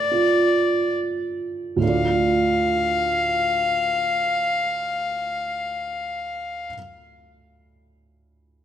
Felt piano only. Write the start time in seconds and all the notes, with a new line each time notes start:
Already playing: D3 A3 A4
0.12 F4
1.76 D2 A2
1.81 A3 D4
1.86 F4 D5